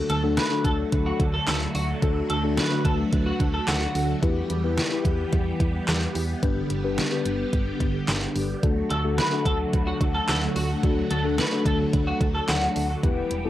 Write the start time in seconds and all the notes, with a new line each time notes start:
Already playing: D3 F#3 A3 D4 F#4 A4
0.10 D2 A4, closed hi-hat
0.23 A3 D4 F#4 A4
0.37 B4, snare, closed hi-hat
0.51 A3 D4 F#4 A4
0.65 D2 A4, kick, closed hi-hat
0.92 D2, kick, closed hi-hat
1.06 F#4
1.20 D2, kick, closed hi-hat
1.34 A4
1.47 D2 A4, snare, clap, closed hi-hat
1.75 D2 F#4, open hi-hat
2.02 D2 A3 D4 F#4 A4, kick, closed hi-hat
2.30 D2 A4, closed hi-hat
2.44 A3 D4 F#4 A4
2.57 B4, snare, closed hi-hat
2.71 A3 D4 F#4 B4
2.85 D2 A4, kick, closed hi-hat
3.13 D2, kick, closed hi-hat
3.26 F#4
3.40 D2, kick, closed hi-hat
3.54 A4
3.68 D2 F#4, snare, clap, closed hi-hat
3.95 D2, open hi-hat
4.23 E2 E3 G3 B3 E4 G4 B4, kick, closed hi-hat
4.50 E2, closed hi-hat
4.64 B3 E4 G4 B4
4.78 snare, closed hi-hat
4.91 B3 E4 G4 B4
5.05 E2, kick, closed hi-hat
5.33 E2, kick, closed hi-hat
5.60 E2, kick, closed hi-hat
5.88 E2, snare, clap, closed hi-hat
6.15 E2, open hi-hat
6.43 G1 D3 G3 B3 D4 G4 B4, kick, closed hi-hat
6.70 G1, closed hi-hat
6.84 B3 D4 G4 B4
6.98 snare, closed hi-hat
7.12 B3 D4 G4 B4
7.25 G1, closed hi-hat
7.53 G1, kick, closed hi-hat
7.80 G1, kick, closed hi-hat
8.08 G1, snare, clap, closed hi-hat
8.36 G1, open hi-hat
8.63 D2 D3 F#3 A3 D4 F#4 A4, kick, closed hi-hat
8.90 D2 A4, closed hi-hat
9.04 A3 D4 F#4 A4
9.18 B4, snare, closed hi-hat
9.32 A3 D4 F#4 A4
9.45 D2 A4, kick, closed hi-hat
9.73 D2, kick, closed hi-hat
9.87 F#4
10.01 D2, kick, closed hi-hat
10.15 A4
10.28 D2 A4, snare, clap, closed hi-hat
10.56 D2 F#4, open hi-hat
10.83 D2 A3 D4 F#4 A4, kick, closed hi-hat
11.11 D2 A4, closed hi-hat
11.24 A3 D4 F#4 A4
11.38 B4, snare, closed hi-hat
11.52 A3 D4 F#4 A4
11.66 D2 A4, kick, closed hi-hat
11.93 D2, kick, closed hi-hat
12.07 F#4
12.21 D2, kick, closed hi-hat
12.35 A4
12.48 D2 F#4, snare, clap, closed hi-hat
12.76 D2, open hi-hat
13.03 E1 E3 G3 B3 E4 G4 B4, kick, closed hi-hat
13.31 E1, closed hi-hat
13.45 B3 E4 G4 A4